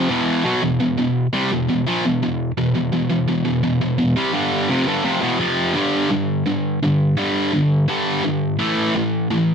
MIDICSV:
0, 0, Header, 1, 2, 480
1, 0, Start_track
1, 0, Tempo, 709220
1, 58, Time_signature, 4, 2, 24, 8
1, 6460, End_track
2, 0, Start_track
2, 0, Title_t, "Distorted electric guitar"
2, 0, Program_c, 0, 30
2, 63, Note_on_c, 0, 40, 93
2, 66, Note_on_c, 0, 47, 103
2, 72, Note_on_c, 0, 52, 110
2, 290, Note_off_c, 0, 47, 0
2, 294, Note_off_c, 0, 40, 0
2, 298, Note_off_c, 0, 52, 0
2, 298, Note_on_c, 0, 47, 100
2, 309, Note_on_c, 0, 54, 98
2, 411, Note_off_c, 0, 47, 0
2, 416, Note_off_c, 0, 54, 0
2, 419, Note_on_c, 0, 40, 64
2, 423, Note_on_c, 0, 47, 78
2, 534, Note_off_c, 0, 40, 0
2, 539, Note_off_c, 0, 47, 0
2, 542, Note_on_c, 0, 40, 67
2, 547, Note_on_c, 0, 47, 73
2, 653, Note_off_c, 0, 40, 0
2, 657, Note_off_c, 0, 47, 0
2, 661, Note_on_c, 0, 40, 67
2, 665, Note_on_c, 0, 47, 87
2, 852, Note_off_c, 0, 40, 0
2, 854, Note_off_c, 0, 47, 0
2, 901, Note_on_c, 0, 48, 98
2, 906, Note_on_c, 0, 55, 110
2, 1013, Note_off_c, 0, 48, 0
2, 1015, Note_off_c, 0, 55, 0
2, 1030, Note_on_c, 0, 47, 65
2, 1031, Note_on_c, 0, 40, 59
2, 1133, Note_off_c, 0, 40, 0
2, 1136, Note_off_c, 0, 47, 0
2, 1141, Note_on_c, 0, 40, 69
2, 1144, Note_on_c, 0, 47, 74
2, 1260, Note_off_c, 0, 40, 0
2, 1260, Note_off_c, 0, 47, 0
2, 1262, Note_on_c, 0, 46, 93
2, 1269, Note_on_c, 0, 53, 113
2, 1374, Note_off_c, 0, 46, 0
2, 1377, Note_off_c, 0, 53, 0
2, 1383, Note_on_c, 0, 40, 70
2, 1390, Note_on_c, 0, 47, 82
2, 1500, Note_off_c, 0, 40, 0
2, 1501, Note_off_c, 0, 47, 0
2, 1508, Note_on_c, 0, 40, 66
2, 1509, Note_on_c, 0, 47, 80
2, 1696, Note_off_c, 0, 40, 0
2, 1696, Note_off_c, 0, 47, 0
2, 1745, Note_on_c, 0, 40, 63
2, 1745, Note_on_c, 0, 47, 77
2, 1852, Note_off_c, 0, 40, 0
2, 1857, Note_off_c, 0, 47, 0
2, 1860, Note_on_c, 0, 40, 66
2, 1865, Note_on_c, 0, 47, 75
2, 1973, Note_off_c, 0, 40, 0
2, 1976, Note_off_c, 0, 47, 0
2, 1981, Note_on_c, 0, 40, 66
2, 1984, Note_on_c, 0, 47, 70
2, 2090, Note_off_c, 0, 40, 0
2, 2094, Note_off_c, 0, 47, 0
2, 2098, Note_on_c, 0, 40, 64
2, 2102, Note_on_c, 0, 47, 69
2, 2213, Note_off_c, 0, 40, 0
2, 2216, Note_off_c, 0, 47, 0
2, 2221, Note_on_c, 0, 40, 71
2, 2224, Note_on_c, 0, 47, 71
2, 2327, Note_off_c, 0, 40, 0
2, 2327, Note_off_c, 0, 47, 0
2, 2335, Note_on_c, 0, 40, 67
2, 2336, Note_on_c, 0, 47, 67
2, 2449, Note_off_c, 0, 40, 0
2, 2452, Note_off_c, 0, 47, 0
2, 2457, Note_on_c, 0, 40, 69
2, 2461, Note_on_c, 0, 47, 76
2, 2571, Note_off_c, 0, 40, 0
2, 2573, Note_off_c, 0, 47, 0
2, 2579, Note_on_c, 0, 40, 67
2, 2581, Note_on_c, 0, 47, 77
2, 2686, Note_off_c, 0, 40, 0
2, 2689, Note_off_c, 0, 47, 0
2, 2694, Note_on_c, 0, 40, 70
2, 2697, Note_on_c, 0, 47, 75
2, 2814, Note_off_c, 0, 47, 0
2, 2817, Note_off_c, 0, 40, 0
2, 2817, Note_on_c, 0, 48, 101
2, 2824, Note_on_c, 0, 55, 110
2, 2931, Note_off_c, 0, 48, 0
2, 2931, Note_on_c, 0, 43, 94
2, 2932, Note_off_c, 0, 55, 0
2, 2933, Note_on_c, 0, 50, 96
2, 2940, Note_on_c, 0, 55, 90
2, 3168, Note_off_c, 0, 43, 0
2, 3170, Note_off_c, 0, 50, 0
2, 3173, Note_off_c, 0, 55, 0
2, 3177, Note_on_c, 0, 41, 103
2, 3184, Note_on_c, 0, 48, 115
2, 3291, Note_off_c, 0, 41, 0
2, 3295, Note_off_c, 0, 48, 0
2, 3295, Note_on_c, 0, 43, 81
2, 3302, Note_on_c, 0, 50, 95
2, 3405, Note_off_c, 0, 43, 0
2, 3408, Note_on_c, 0, 41, 97
2, 3414, Note_off_c, 0, 50, 0
2, 3417, Note_on_c, 0, 48, 103
2, 3522, Note_off_c, 0, 41, 0
2, 3525, Note_on_c, 0, 40, 87
2, 3527, Note_off_c, 0, 48, 0
2, 3530, Note_on_c, 0, 47, 96
2, 3645, Note_off_c, 0, 40, 0
2, 3648, Note_off_c, 0, 47, 0
2, 3649, Note_on_c, 0, 41, 87
2, 3653, Note_on_c, 0, 48, 91
2, 3655, Note_on_c, 0, 53, 105
2, 3887, Note_off_c, 0, 41, 0
2, 3889, Note_off_c, 0, 48, 0
2, 3890, Note_off_c, 0, 53, 0
2, 3891, Note_on_c, 0, 43, 101
2, 3898, Note_on_c, 0, 50, 95
2, 3902, Note_on_c, 0, 55, 101
2, 4121, Note_off_c, 0, 43, 0
2, 4124, Note_off_c, 0, 50, 0
2, 4126, Note_off_c, 0, 55, 0
2, 4132, Note_on_c, 0, 43, 67
2, 4138, Note_on_c, 0, 50, 83
2, 4352, Note_off_c, 0, 43, 0
2, 4355, Note_off_c, 0, 50, 0
2, 4372, Note_on_c, 0, 43, 73
2, 4375, Note_on_c, 0, 50, 89
2, 4592, Note_off_c, 0, 43, 0
2, 4593, Note_off_c, 0, 50, 0
2, 4620, Note_on_c, 0, 43, 74
2, 4620, Note_on_c, 0, 50, 81
2, 4835, Note_off_c, 0, 43, 0
2, 4835, Note_off_c, 0, 50, 0
2, 4852, Note_on_c, 0, 43, 88
2, 4858, Note_on_c, 0, 50, 90
2, 4864, Note_on_c, 0, 55, 93
2, 5081, Note_off_c, 0, 43, 0
2, 5084, Note_off_c, 0, 50, 0
2, 5087, Note_off_c, 0, 55, 0
2, 5095, Note_on_c, 0, 43, 87
2, 5097, Note_on_c, 0, 50, 90
2, 5313, Note_off_c, 0, 43, 0
2, 5313, Note_off_c, 0, 50, 0
2, 5333, Note_on_c, 0, 43, 95
2, 5339, Note_on_c, 0, 50, 106
2, 5343, Note_on_c, 0, 55, 113
2, 5561, Note_off_c, 0, 43, 0
2, 5564, Note_off_c, 0, 50, 0
2, 5566, Note_off_c, 0, 55, 0
2, 5576, Note_on_c, 0, 43, 77
2, 5578, Note_on_c, 0, 50, 78
2, 5793, Note_off_c, 0, 43, 0
2, 5794, Note_off_c, 0, 50, 0
2, 5813, Note_on_c, 0, 45, 101
2, 5817, Note_on_c, 0, 52, 108
2, 5823, Note_on_c, 0, 57, 88
2, 6041, Note_off_c, 0, 45, 0
2, 6043, Note_off_c, 0, 52, 0
2, 6045, Note_off_c, 0, 57, 0
2, 6060, Note_on_c, 0, 45, 79
2, 6061, Note_on_c, 0, 52, 89
2, 6274, Note_off_c, 0, 45, 0
2, 6275, Note_off_c, 0, 52, 0
2, 6297, Note_on_c, 0, 45, 77
2, 6299, Note_on_c, 0, 52, 94
2, 6460, Note_off_c, 0, 45, 0
2, 6460, Note_off_c, 0, 52, 0
2, 6460, End_track
0, 0, End_of_file